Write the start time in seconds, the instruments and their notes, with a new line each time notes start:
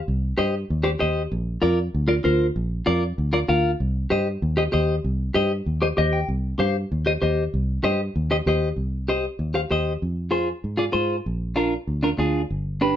0.08 fingered electric bass C2
0.38 fingered electric bass G2, clean electric guitar G4 C5 D#5
0.70 fingered electric bass D#2
0.83 clean electric guitar G4 C5 D5
0.99 fingered electric bass D#2, clean electric guitar G4 C5 D#5
1.32 fingered electric bass A#1
1.62 fingered electric bass F2, clean electric guitar F4 A#4 D5
1.94 fingered electric bass D2
2.08 clean electric guitar F4 A#4 D5
2.24 fingered electric bass D2, clean electric guitar F4 A#4 C5
2.56 fingered electric bass A#1
2.86 fingered electric bass F2, clean electric guitar F4 A#4 D5
3.18 fingered electric bass D2
3.33 clean electric guitar F4 A#4 D5
3.48 fingered electric bass D2, clean electric guitar F4 A#4 F5
3.80 fingered electric bass C2
4.10 fingered electric bass G2, clean electric guitar G4 C5 D#5
4.42 fingered electric bass D#2
4.57 clean electric guitar G4 C5 D#5
4.72 fingered electric bass D#2, clean electric guitar G4 C5 D#5
5.04 fingered electric bass C2
5.34 fingered electric bass G2, clean electric guitar G4 C5 D#5
5.66 fingered electric bass D#2
5.82 clean electric guitar G4 C5 D#5
5.97 fingered electric bass D#2, clean electric guitar G4 C5 D#5
6.13 clean electric guitar G5
6.28 fingered electric bass C2
6.59 fingered electric bass G2, clean electric guitar G4 C5 F5
6.92 fingered electric bass D#2
7.06 clean electric guitar G4 C5 D#5
7.22 fingered electric bass D#2, clean electric guitar G4 C5 D#5
7.54 fingered electric bass C2
7.84 fingered electric bass G2, clean electric guitar G4 C5 D#5
8.16 fingered electric bass D#2
8.31 clean electric guitar G4 C5 D#5
8.46 fingered electric bass D#2, clean electric guitar G4 C5 D#5
8.76 fingered electric bass C2
9.08 clean electric guitar G4 C5 D#5
9.39 fingered electric bass D#2
9.54 clean electric guitar G4 C5 F5
9.71 fingered electric bass D#2, clean electric guitar G4 C5 D#5
10.02 fingered electric bass F2
10.31 clean electric guitar F4 G#4 C5
10.64 fingered electric bass G#2
10.77 clean electric guitar F4 G#4 D5
10.92 fingered electric bass G#2, clean electric guitar F4 G#4 C5
11.26 fingered electric bass A#1
11.56 clean electric guitar D4 F4 A#4
11.87 fingered electric bass D2
12.03 clean electric guitar D4 F4 A#4
12.18 fingered electric bass D2, clean electric guitar D4 F4 G#4
12.50 fingered electric bass G1
12.81 clean electric guitar D4 G4 B4